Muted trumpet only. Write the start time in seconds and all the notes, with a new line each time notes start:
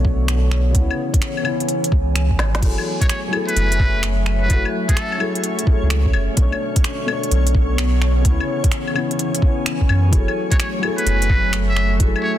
3.01 C#5
3.09 C#5
3.48 B4
4.41 B4
4.88 A4
10.51 C#5
10.59 C#5
10.98 B4
11.69 E5
12.23 C#5